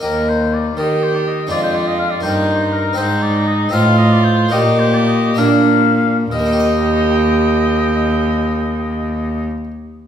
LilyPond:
<<
  \new Staff \with { instrumentName = "Oboe" } { \time 6/8 \key ees \major \tempo 4. = 73 bes'8 c''8 d''8 ees''8 c''16 d''16 ees''8 | d''16 c''16 d''16 ees''16 f''16 d''16 c''4 bes'8 | c''8 d''8 ees''8 f''8 ees''16 d''16 c''8 | ees''8 c''16 d''16 ees''8 f''4. |
ees''2.~ | ees''2. | }
  \new Staff \with { instrumentName = "Violin" } { \time 6/8 \key ees \major r4. g'4. | f'4. ees'4. | ees'4. f'4. | g'4. d'8. r8. |
g'2.~ | g'2. | }
  \new Staff \with { instrumentName = "Harpsichord" } { \time 6/8 \key ees \major <bes ees' g'>2. | <aes d' aes'>4. <bes ees' g'>4. | <c' ees' c''>4. <c' ees' c''>4. | <bes ees' g'>4. <bes d' aes'>4. |
<ees bes ees' g' ees''>2.~ | <ees bes ees' g' ees''>2. | }
  \new Staff \with { instrumentName = "Harpsichord" } { \clef bass \time 6/8 \key ees \major ees,4. ees4. | f,4. g,4. | aes,4. a,4. | bes,4. bes,4. |
r2. | r2. | }
  \new Staff \with { instrumentName = "Cello" } { \clef bass \time 6/8 \key ees \major ees,4. ees4. | f,4. g,4. | aes,4. a,4. | bes,4. bes,4. |
ees,2.~ | ees,2. | }
>>